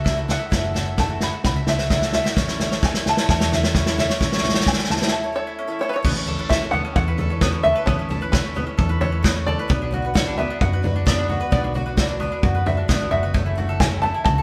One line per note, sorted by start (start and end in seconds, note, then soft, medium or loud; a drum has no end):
0.00 0.39 C#2 loud
0.00 0.18 E3 medium
0.00 0.17 A3 medium
0.00 0.17 C#4 medium
0.00 0.15 F#4 medium
0.00 0.16 A4 medium
0.00 0.27 A4 medium
0.00 0.17 E5 medium
0.00 0.26 F#5 medium
0.05 0.50 E4 medium
0.05 kick loud
0.05 snare medium
0.05 floor tom medium
0.16 0.30 F#2 soft
0.16 0.30 C#3 soft
0.16 0.28 E3 medium
0.16 0.29 A3 medium
0.16 0.30 C#4 medium
0.16 0.62 F#4 medium
0.16 0.29 A4 medium
0.28 0.41 E3 medium
0.28 0.41 A3 medium
0.28 0.40 C#4 medium
0.28 0.73 A4 medium
0.28 0.38 A4 medium
0.28 1.02 F#5 loud
0.28 snare medium
0.28 floor tom medium
0.39 0.50 E3 soft
0.39 0.50 A3 soft
0.39 0.51 C#4 soft
0.39 0.51 A4 soft
0.39 0.85 E5 medium
0.50 1.31 F#1 medium
0.50 0.86 F#2 medium
0.50 0.86 C#3 medium
0.50 0.87 E3 medium
0.50 0.86 A3 medium
0.50 0.85 C#4 medium
0.50 0.98 E4 medium
0.50 0.84 A4 medium
0.50 kick loud
0.50 snare medium
0.50 floor tom medium
0.63 1.08 F#4 medium
0.74 0.97 A4 medium
0.74 snare medium
0.74 floor tom medium
0.85 0.97 E3 soft
0.85 0.97 A3 soft
0.85 0.98 C#4 soft
0.85 0.98 A4 soft
0.85 1.33 E5 medium
0.97 1.22 F#2 medium
0.97 1.21 C#3 medium
0.97 1.19 E3 medium
0.97 1.21 A3 medium
0.97 1.22 C#4 medium
0.97 1.45 A4 medium
0.97 1.22 A4 medium
0.97 1.22 A5 medium
0.97 kick loud
0.97 snare medium
0.97 floor tom medium
1.09 1.32 F#4 medium
1.21 1.56 E3 medium
1.21 1.57 A3 medium
1.21 1.57 C#4 medium
1.21 1.55 A4 medium
1.21 1.44 B5 medium
1.21 snare medium
1.21 floor tom medium
1.33 1.78 F#4 medium
1.44 2.23 C#2 medium
1.44 1.69 B5 medium
1.44 kick loud
1.44 snare loud
1.44 floor tom medium
1.56 1.67 E3 soft
1.56 1.67 A3 soft
1.56 1.68 C#4 soft
1.56 1.68 A4 soft
1.56 2.02 E5 medium
1.67 2.03 E3 medium
1.67 2.03 A3 medium
1.67 2.03 C#4 medium
1.67 2.11 A4 medium
1.67 2.02 A4 medium
1.67 2.13 E5 medium
1.67 snare loud
1.67 floor tom medium
1.78 2.00 F#4 medium
1.78 snare medium
1.90 2.36 E4 medium
1.90 kick loud
1.90 snare loud
1.90 floor tom medium
2.01 2.13 E3 medium
2.01 2.14 A3 medium
2.01 2.14 C#4 medium
2.01 2.36 F#4 medium
2.01 2.15 A4 medium
2.01 snare loud
2.05 2.16 F#2 medium
2.05 2.15 C#3 medium
2.13 2.25 E3 medium
2.13 2.26 A3 medium
2.13 2.25 C#4 medium
2.13 2.36 A4 medium
2.13 2.85 E5 medium
2.13 snare loud
2.13 floor tom medium
2.17 2.25 A4 medium
2.24 2.38 C#4 soft
2.24 2.37 A4 medium
2.24 2.36 E5 medium
2.24 snare loud
2.28 2.37 E3 soft
2.28 2.37 A3 soft
2.36 3.15 A1 medium
2.36 2.72 A2 medium
2.36 2.72 E3 medium
2.36 2.72 A3 medium
2.36 2.83 C#4 medium
2.36 2.73 C#4 medium
2.36 2.71 E4 medium
2.36 2.70 A4 medium
2.36 kick loud
2.36 snare loud
2.36 floor tom medium
2.48 2.93 E4 medium
2.48 snare loud
2.59 2.70 A4 medium
2.59 snare loud
2.59 floor tom medium
2.70 2.84 C#4 soft
2.70 2.83 E4 medium
2.70 2.83 A4 medium
2.70 2.81 C#5 medium
2.70 snare medium
2.74 2.83 A3 soft
2.82 3.06 A2 medium
2.82 3.06 E3 medium
2.82 3.04 A3 medium
2.82 3.05 C#4 medium
2.82 3.06 E4 loud
2.82 3.28 A4 medium
2.82 3.07 A4 medium
2.82 3.06 G#5 medium
2.82 kick loud
2.82 snare loud
2.82 floor tom medium
2.94 3.16 E4 medium
2.94 snare medium
3.05 3.40 A3 medium
3.05 3.39 C#4 medium
3.05 3.39 E4 medium
3.05 3.37 A4 medium
3.05 snare medium
3.05 floor tom medium
3.09 3.29 A5 medium
3.17 3.62 E4 medium
3.17 snare loud
3.29 4.07 E2 loud
3.29 3.53 A5 loud
3.29 kick loud
3.29 snare loud
3.29 floor tom medium
3.39 3.49 A3 soft
3.39 3.51 C#4 soft
3.39 3.52 E4 soft
3.39 3.51 A4 medium
3.39 3.51 C#5 medium
3.39 snare loud
3.50 3.86 A3 medium
3.50 3.85 C#4 medium
3.50 3.85 E4 medium
3.50 3.97 A4 medium
3.50 3.85 A4 medium
3.50 snare loud
3.50 floor tom medium
3.54 3.96 E5 medium
3.63 3.85 E4 medium
3.63 snare loud
3.75 4.19 C#4 loud
3.75 kick loud
3.75 snare loud
3.75 floor tom medium
3.86 3.99 A2 medium
3.86 3.99 E3 medium
3.86 3.96 A3 medium
3.86 3.97 C#4 medium
3.86 3.98 E4 medium
3.86 4.30 E4 medium
3.86 3.98 A4 medium
3.86 snare loud
3.97 4.09 A3 medium
3.97 4.10 C#4 medium
3.97 4.09 E4 medium
3.97 4.09 A4 medium
3.97 4.08 A4 medium
3.97 4.70 E5 medium
3.97 snare loud
3.97 floor tom medium
4.09 4.19 A3 soft
4.09 4.20 C#4 soft
4.09 4.20 E4 soft
4.09 4.21 A4 medium
4.09 4.54 C#5 loud
4.09 snare loud
4.20 4.99 A1 loud
4.20 4.55 A2 medium
4.20 4.55 E3 medium
4.20 4.55 A3 medium
4.20 4.66 C#4 medium
4.20 4.55 C#4 medium
4.20 4.54 E4 medium
4.20 4.53 A4 medium
4.20 kick loud
4.20 snare medium
4.20 floor tom medium
4.32 4.44 E4 medium
4.32 snare loud
4.38 snare loud
4.43 4.64 A4 medium
4.43 snare loud
4.43 floor tom medium
4.49 snare loud
4.54 4.64 A3 soft
4.54 4.66 C#4 medium
4.54 4.66 E4 medium
4.54 4.66 A4 medium
4.54 4.65 C#5 medium
4.54 snare loud
4.60 snare loud
4.65 4.89 A2 medium
4.65 4.89 E3 medium
4.65 4.87 A3 medium
4.65 4.88 C#4 loud
4.65 4.89 E4 loud
4.65 5.12 A4 medium
4.65 4.90 A4 medium
4.65 4.89 G#5 medium
4.65 kick loud
4.65 snare loud
4.65 floor tom medium
4.73 snare loud
4.77 4.99 E4 medium
4.77 snare loud
4.84 5.00 A3 medium
4.84 snare loud
4.89 5.00 C#4 medium
4.89 4.99 E4 medium
4.89 4.99 A4 medium
4.89 5.11 A5 medium
4.89 snare medium
4.89 floor tom medium
4.96 5.22 A4 medium
4.96 snare medium
5.00 5.24 A3 soft
5.00 5.24 C#4 soft
5.00 5.46 E4 medium
5.00 5.23 E4 medium
5.00 snare loud
5.08 snare loud
5.12 5.34 A5 medium
5.23 5.31 A3 soft
5.23 5.33 C#4 medium
5.23 5.34 E4 medium
5.23 5.35 A4 medium
5.23 5.36 C#5 medium
5.33 5.68 A3 medium
5.33 5.67 C#4 medium
5.33 5.67 E4 medium
5.33 5.81 A4 medium
5.33 5.66 A4 medium
5.33 5.80 C#5 medium
5.47 5.69 E4 medium
5.59 6.04 C#4 loud
5.67 5.81 A2 medium
5.67 5.81 E3 medium
5.67 5.78 A3 medium
5.67 5.80 C#4 medium
5.67 5.80 E4 medium
5.67 6.05 E4 medium
5.67 5.80 A4 medium
5.79 5.92 A3 medium
5.79 5.92 C#4 medium
5.79 5.91 E4 medium
5.79 5.93 A4 medium
5.79 5.89 A4 medium
5.79 5.88 C#5 loud
5.89 6.02 C#4 medium
5.89 6.03 E4 medium
5.89 6.03 A4 medium
5.89 5.96 B4 loud
5.94 6.01 A3 soft
5.94 6.05 C#5 loud
5.94 6.52 C#5 loud
6.02 6.82 A1 loud
6.02 6.24 A3 medium
6.02 6.16 B3 medium
6.02 6.26 C#4 medium
6.02 6.27 E4 medium
6.02 6.27 B4 medium
6.02 kick loud
6.02 floor tom medium
6.02 crash loud
6.16 6.61 C#4 medium
6.26 6.38 A3 medium
6.26 6.39 C#4 medium
6.26 6.37 E4 medium
6.26 6.49 A4 medium
6.26 6.36 B4 medium
6.26 floor tom medium
6.37 6.48 C#4 soft
6.37 6.49 E4 medium
6.37 6.49 B4 medium
6.37 6.84 B4 medium
6.49 6.61 A3 medium
6.49 6.61 C#4 medium
6.49 6.62 E4 loud
6.49 6.95 A4 medium
6.49 6.60 B4 medium
6.49 6.71 E5 loud
6.49 kick loud
6.49 snare loud
6.49 floor tom loud
6.61 6.73 C#4 medium
6.61 6.72 C#4 soft
6.61 6.74 E4 soft
6.61 6.73 B4 medium
6.71 7.07 A3 medium
6.71 6.84 B3 medium
6.71 7.07 C#4 medium
6.71 7.07 E4 medium
6.71 6.94 F#5 loud
6.71 floor tom medium
6.76 7.06 B4 medium
6.85 7.29 C#4 medium
6.96 7.74 E2 loud
6.96 7.18 A4 medium
6.96 7.63 F#5 loud
6.96 kick loud
6.96 floor tom loud
7.07 7.18 C#4 soft
7.07 7.18 E4 soft
7.07 7.18 B4 medium
7.07 7.53 B4 medium
7.17 7.29 A3 medium
7.17 7.30 C#4 medium
7.17 7.30 E4 medium
7.17 7.63 A4 medium
7.17 7.28 B4 medium
7.17 floor tom loud
7.29 7.42 C#4 medium
7.29 7.41 C#4 soft
7.29 7.41 E4 soft
7.29 7.41 B4 medium
7.41 7.75 A3 loud
7.41 7.53 B3 loud
7.41 7.76 C#4 loud
7.41 7.76 E4 loud
7.41 7.74 B4 loud
7.41 kick loud
7.41 snare loud
7.41 floor tom loud
7.53 7.87 C#4 medium
7.63 8.09 A4 medium
7.63 7.87 E5 loud
7.63 floor tom medium
7.75 7.87 C#4 soft
7.75 7.87 E4 soft
7.75 7.87 B4 medium
7.75 8.21 B4 loud
7.86 8.65 A1 loud
7.86 8.07 A3 medium
7.86 7.99 B3 loud
7.86 8.08 C#4 medium
7.86 8.10 E4 medium
7.86 8.11 B4 medium
7.86 8.33 C#5 loud
7.86 kick loud
7.86 floor tom medium
7.99 8.43 C#4 medium
8.09 8.21 A3 medium
8.09 8.21 C#4 medium
8.09 8.22 E4 medium
8.09 8.32 A4 medium
8.09 8.20 B4 medium
8.09 floor tom medium
8.21 8.32 C#4 soft
8.21 8.33 E4 medium
8.21 8.32 B4 medium
8.21 8.67 B4 loud
8.32 8.53 A3 medium
8.32 8.54 C#4 medium
8.32 8.56 E4 medium
8.32 8.76 A4 medium
8.32 9.03 B4 medium
8.32 8.56 B4 loud
8.32 kick loud
8.32 snare loud
8.32 floor tom loud
8.45 8.56 C#4 medium
8.54 8.89 A3 medium
8.54 8.66 B3 loud
8.54 8.90 C#4 medium
8.54 8.90 E4 medium
8.54 8.88 B4 medium
8.54 floor tom medium
8.67 9.11 C#4 medium
8.78 9.56 E2 loud
8.78 9.00 A4 medium
8.78 kick loud
8.78 floor tom loud
8.89 9.01 C#4 soft
8.89 9.02 E4 medium
8.89 9.35 B4 loud
8.89 9.01 B4 medium
9.01 9.21 A3 medium
9.01 9.23 C#4 medium
9.01 9.24 E4 medium
9.01 9.47 A4 medium
9.01 9.24 B4 medium
9.01 9.46 C#5 loud
9.01 floor tom loud
9.12 9.24 C#4 medium
9.23 9.58 A3 medium
9.23 9.35 B3 loud
9.23 9.58 C#4 loud
9.23 9.58 E4 medium
9.23 9.57 B4 loud
9.23 kick loud
9.23 snare loud
9.23 floor tom loud
9.36 9.70 C#4 medium
9.46 9.70 A4 loud
9.46 10.11 D5 loud
9.46 floor tom medium
9.58 9.69 C#4 medium
9.58 9.69 E4 medium
9.58 9.69 B4 medium
9.58 9.70 B4 loud
9.68 10.48 B1 loud
9.68 9.92 B2 medium
9.68 9.90 F#3 medium
9.68 10.16 B3 medium
9.68 9.91 D4 medium
9.68 9.92 F#4 medium
9.68 9.93 B4 medium
9.68 kick loud
9.68 floor tom loud
9.82 9.93 D4 medium
9.91 10.03 F#3 medium
9.91 10.04 D4 medium
9.91 10.03 F#4 medium
9.91 10.15 F#4 medium
9.91 10.01 B4 medium
9.91 floor tom medium
10.02 10.13 D4 medium
10.02 10.13 F#4 medium
10.02 10.14 B4 medium
10.02 10.50 B4 medium
10.14 10.37 B2 medium
10.14 10.37 F#3 medium
10.14 10.38 D4 medium
10.14 10.38 F#4 medium
10.14 10.27 F#4 medium
10.14 10.38 B4 loud
10.14 10.37 F#5 loud
10.14 kick loud
10.14 snare loud
10.14 floor tom loud
10.27 10.49 D4 medium
10.38 10.72 F#3 medium
10.38 10.84 B3 medium
10.38 10.73 D4 medium
10.38 10.73 F#4 medium
10.38 10.71 B4 medium
10.38 10.61 E5 loud
10.38 floor tom medium
10.50 10.62 D4 medium
10.61 11.39 F#2 loud
10.61 10.84 F#4 medium
10.61 11.08 F#5 loud
10.61 kick loud
10.61 floor tom loud
10.72 10.82 D4 soft
10.72 10.83 F#4 soft
10.72 10.84 B4 medium
10.72 11.18 B4 loud
10.83 11.05 F#3 medium
10.83 11.06 D4 medium
10.83 11.07 F#4 medium
10.83 10.95 F#4 medium
10.83 11.07 B4 medium
10.83 floor tom loud
10.96 11.17 D4 medium
11.06 11.40 B2 loud
11.06 11.40 F#3 medium
11.06 11.51 B3 loud
11.06 11.41 D4 medium
11.06 11.40 F#4 medium
11.06 11.39 B4 loud
11.06 11.51 D5 loud
11.06 kick loud
11.06 snare loud
11.06 floor tom loud
11.18 11.29 D4 medium
11.29 11.74 F#4 medium
11.29 floor tom medium
11.40 11.51 D4 soft
11.40 11.51 F#4 medium
11.40 11.52 B4 medium
11.40 11.85 B4 loud
11.51 12.30 B1 loud
11.51 11.74 B2 medium
11.51 11.73 F#3 medium
11.51 11.64 B3 loud
11.51 11.74 D4 medium
11.51 11.75 F#4 medium
11.51 11.76 B4 medium
11.51 11.94 D5 medium
11.51 kick loud
11.51 floor tom medium
11.64 12.07 D4 medium
11.74 11.86 F#3 medium
11.74 11.87 D4 medium
11.74 11.96 F#4 medium
11.74 11.86 F#4 medium
11.74 11.85 B4 medium
11.74 floor tom medium
11.86 11.96 D4 medium
11.86 11.97 F#4 medium
11.86 11.97 B4 medium
11.86 12.32 B4 medium
11.97 12.20 B2 medium
11.97 12.19 F#3 medium
11.97 12.20 D4 medium
11.97 12.08 F#4 medium
11.97 12.21 F#4 medium
11.97 12.21 B4 loud
11.97 kick loud
11.97 snare loud
11.97 floor tom loud
12.09 12.31 D4 medium
12.20 12.54 F#3 medium
12.20 12.66 B3 medium
12.20 12.55 D4 medium
12.20 12.56 F#4 medium
12.20 12.54 B4 medium
12.20 floor tom medium
12.32 12.43 D4 medium
12.43 12.82 F#2 loud
12.43 12.65 F#4 medium
12.43 kick loud
12.43 floor tom medium
12.55 12.66 D4 soft
12.55 12.67 F#4 soft
12.55 13.00 B4 medium
12.55 12.66 B4 medium
12.66 12.88 F#3 medium
12.66 12.88 D4 medium
12.66 12.77 F#4 medium
12.66 12.89 F#4 medium
12.66 12.89 B4 medium
12.66 13.10 E5 loud
12.66 floor tom loud
12.77 12.99 D4 medium
12.88 13.09 G#1 loud
12.88 13.23 B2 medium
12.88 13.23 F#3 medium
12.88 13.34 B3 loud
12.88 13.23 D4 medium
12.88 13.24 F#4 loud
12.88 13.22 B4 loud
12.88 kick loud
12.88 snare loud
12.88 floor tom medium
13.00 13.11 D4 medium
13.11 13.32 F#1 medium
13.11 13.34 F#4 medium
13.11 13.80 E5 loud
13.11 floor tom medium
13.23 13.34 D4 soft
13.23 13.35 F#4 medium
13.23 13.34 B4 loud
13.23 13.35 B4 medium
13.34 14.12 F#1 loud
13.34 13.57 F#2 medium
13.34 13.57 C#3 medium
13.34 13.54 E3 medium
13.34 13.80 A3 loud
13.34 13.56 A3 medium
13.34 13.57 C#4 medium
13.34 13.57 A4 medium
13.34 kick loud
13.34 floor tom medium
13.46 13.57 E4 medium
13.55 13.68 E3 medium
13.55 13.68 A3 medium
13.55 13.67 C#4 medium
13.55 13.80 F#4 medium
13.55 13.66 A4 medium
13.55 floor tom medium
13.67 13.80 E3 medium
13.67 13.80 A3 medium
13.67 13.80 C#4 medium
13.67 13.79 A4 medium
13.67 14.14 A4 medium
13.80 13.91 F#2 medium
13.80 13.91 C#3 medium
13.80 13.92 E3 loud
13.80 13.92 A3 medium
13.80 13.90 C#4 loud
13.80 13.91 F#4 medium
13.80 13.90 A4 medium
13.80 14.01 G#5 loud
13.80 kick loud
13.80 snare loud
13.80 floor tom loud
13.91 14.00 E3 soft
13.91 14.01 A3 soft
13.91 14.02 C#4 soft
13.91 14.13 E4 medium
13.91 14.02 A4 medium
14.02 14.36 E3 medium
14.02 14.37 A3 medium
14.02 14.43 A3 medium
14.02 14.36 C#4 medium
14.02 14.34 A4 medium
14.02 14.23 A5 loud
14.02 floor tom medium
14.14 14.26 E4 medium
14.24 14.43 C#2 loud
14.24 14.43 F#4 medium
14.24 14.43 A5 loud
14.24 kick loud
14.24 floor tom loud
14.36 14.43 E3 soft
14.36 14.43 A3 soft
14.36 14.43 C#4 soft
14.36 14.43 A4 medium